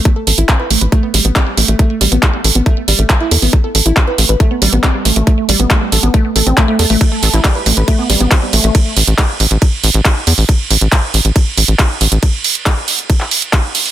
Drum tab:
RD |----------------|----------------|----------------|----------------|
HH |x-oxx-oxx-oxx-ox|x-oxx-oxx-oxx-oo|x-oxx-oxx-oxx-ox|x-oxx-oxx-oxx-oo|
CP |----x-------x---|----x-------x---|----x-------x---|----x-------x---|
BD |o---o---o---o---|o---o---o---o---|o---o---o---o---|o---o---o---o---|

RD |x---x---x---x---|x---x---x---x---|x---x---x---x---|x---x---x---x---|
HH |--oxx-oxx-oxx-ox|x-oxx-oxx-oxx-oo|x-oxx-oxx-oxx-ox|x-oxx-oxx-oxx-oo|
CP |----x-------x---|----x-------x---|----x-------x---|----x----x--x---|
BD |o---o---o---o---|o---o---o---o---|o---o---o---o---|o---o---o---o---|